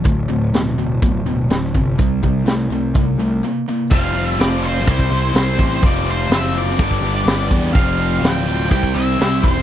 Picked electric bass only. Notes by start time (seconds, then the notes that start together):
0.05 D1
0.29 D1
0.52 D1
0.77 D1
1.02 D1
1.24 D1
1.48 D1
1.74 G1
1.99 C2
2.23 C2
2.45 C2
2.69 C2
2.95 C2
3.18 C2
3.91 F1
4.39 F1
4.87 C2
5.11 C2
5.34 C2
5.58 A1
5.83 F1
6.30 F#1
6.78 G1
7.01 G1
7.25 G1
7.51 E2
7.75 F1
8.22 D1
8.71 C2
8.95 C2
9.18 C2
9.43 E1